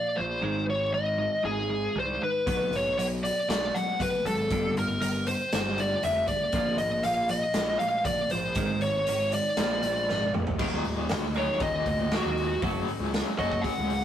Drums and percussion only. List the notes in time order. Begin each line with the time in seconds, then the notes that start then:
2.47 kick, closed hi-hat
2.73 closed hi-hat
2.99 closed hi-hat
3.25 closed hi-hat
3.50 snare, closed hi-hat
3.75 closed hi-hat
4.00 kick, closed hi-hat
4.26 closed hi-hat
4.50 kick, closed hi-hat
4.77 closed hi-hat
5.01 closed hi-hat
5.27 closed hi-hat
5.52 snare, closed hi-hat
5.78 closed hi-hat
6.03 closed hi-hat
6.28 kick, closed hi-hat
6.52 kick, closed hi-hat
6.78 closed hi-hat
7.03 closed hi-hat
7.28 closed hi-hat
7.54 snare, closed hi-hat
7.80 closed hi-hat
8.05 kick, closed hi-hat
8.30 closed hi-hat
8.55 kick, closed hi-hat
8.81 closed hi-hat
9.07 closed hi-hat
9.32 closed hi-hat
9.57 snare, closed hi-hat
9.83 closed hi-hat
10.09 snare
10.22 high tom
10.34 mid tom
10.47 floor tom
10.59 kick, crash
10.85 open hi-hat
11.09 snare, open hi-hat
11.34 open hi-hat
11.60 kick, open hi-hat
11.86 kick, open hi-hat
12.11 snare, open hi-hat
12.37 open hi-hat
12.62 kick, open hi-hat
12.88 open hi-hat
13.14 snare, open hi-hat
13.39 kick, open hi-hat
13.52 kick
13.64 kick, open hi-hat
13.90 open hi-hat